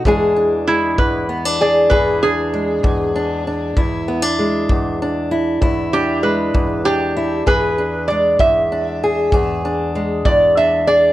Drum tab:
BD |o--o--o--o--|o--o--o--o--|o--o--o--o--|